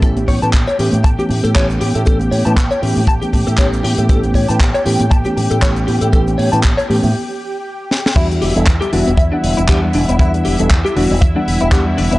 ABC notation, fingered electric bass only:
X:1
M:4/4
L:1/16
Q:"Swing 16ths" 1/4=118
K:Edor
V:1 name="Fingered electric bass" clef=bass
A,,,2 A,, A,, A,,, z A,, A,, A,,, z A,, A,, A,,,2 A,, A,, | A,,,2 A,, A,, A,,, z A,, A,, A,,, z A,, A,, A,,,2 A,, A,, | A,,,2 A,, A,, A,,, z A,, A,, A,,, z A,, A,, A,,,2 A,, A,, | A,,,2 A,, A,, A,,, z A,, A,, z8 |
E,,2 E,,, E,,, E,, z E,,, E,,, E,, z E,,, E,,, E,,2 E,,, E,,, | E,,2 E,,, E,,, E,, z E,,, E,,, E,, z E,,, E,,, E,,2 E,,, E,,, |]